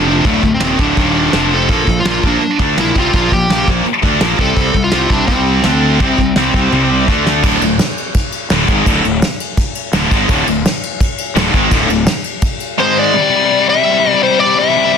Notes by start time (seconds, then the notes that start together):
Already playing: F1 F2 C3 F3
0.08 D4
0.25 D1 D2 A2 D3 A3, kick, open hi-hat
0.43 D1 D2 A2, kick
0.54 C4
0.60 D#1 D#2 A#2 D#3, snare
0.79 D1 D2 A2 D3 D4, kick
0.97 D#1 D#2 A#2 D#3, kick, open hi-hat
1.33 F1 F2 C3 F3, snare, open hi-hat
1.54 A4
1.69 A#1 A#2 F3 A#3, kick, open hi-hat
1.87 A#1 A#2 F3, kick
2.00 F4
2.05 A#1 A#2 F3 A#3, snare
2.23 A#1 A#2 F3 A#3 D4, kick
2.41 muted overdriven electric guitar stroke, muted distorted electric guitar stroke, muted fingered electric bass stroke, open hi-hat
2.59 D2 D3 A3 D4, kick
2.77 A#1 A#2 F3 A#3 E4, snare, open hi-hat
2.96 C2 C3 G3 C4 F4, kick
3.14 A#1 A#2 F3 A#3 F4, kick, open hi-hat
3.32 A#1 A#2 F3 G4, kick
3.50 A#1 A#2 F3 A#3, snare, open hi-hat
3.68 A#1 A#2 F3 A#3, kick
3.85 muted overdriven electric guitar stroke, muted fingered electric bass stroke, muted distorted electric guitar stroke, open hi-hat
4.03 D2 D3 A3 D4, kick
4.20 A#1 A#2 F3 A#3, snare, open hi-hat
4.39 C2 C3 G3 C4 A4, kick
4.57 C2 C3 G3 C4, kick, open hi-hat
4.74 C2 C3 G3, kick
4.84 F4
4.92 C2 C3 G3 C4, snare
5.09 C2 C3 G3 C4 D4, kick
5.27 C2 C3 G3 C4, kick, open hi-hat
5.63 D2 D3 A3 D4, snare, open hi-hat
6.00 C2 C3 G3 C4, kick, open hi-hat
6.18 C2 C3 G3, kick
6.36 C2 C3 G3 C4, snare
6.54 C2 C3 G3 C4, kick
6.72 C2 C3 G3 C4, high tom
7.07 D2 D3 A3 D4, kick
7.26 snare
7.43 D1 D2 A2 D3, kick, crash
7.61 D1 D2 A2, ride
7.79 snare, ride
7.98 ride
8.14 kick, ride
8.32 ride
8.50 D1 D2 A2 D3, snare, ride
8.68 G#1 G#2 D#3 G#3, kick, ride
8.86 D1 D2 A2 D3, kick, ride
9.05 D1 D2 A2, ride
9.22 snare, ride
9.40 ride
9.57 kick, ride
9.75 ride
9.93 D1 D2 A2 D3, snare, ride
10.11 G#1 G#2 D#3 G#3, kick, ride
10.29 D1 D2 A2 D3, kick, crash
10.47 D1 D2 A2, ride
10.65 snare, ride
10.83 ride
11.00 kick, ride
11.18 ride
11.35 D1 D2 A2 D3, snare, ride
11.53 G#1 G#2 D#3 G#3, kick, ride
11.70 D1 D2 A2 D3, kick, ride
11.89 D1 D2 A2, ride
12.06 snare, ride
12.24 ride
12.42 kick, ride
12.60 ride
12.78 G#2 D#3 G#3 C5
12.99 D5
13.13 C3 G3
13.22 C3 G3
13.29 C3 G3
13.36 C3 G3
13.45 C3 G3
13.51 C3 G3
13.60 C3 G3
13.68 C3 G3 E5
13.76 C3 G3
13.84 C3 G3
13.91 C3 G3
13.99 C3 G3
14.06 C3 G3
14.11 C3 G3 D5
14.22 C3 G3 C5
14.30 C3 G3
14.38 C3 G3 D5
14.45 C3 G3
14.55 C3 G3 E5
14.62 C3 G3
14.70 C3 G3
14.77 C3 G3
14.86 C3 G3
14.92 C3 G3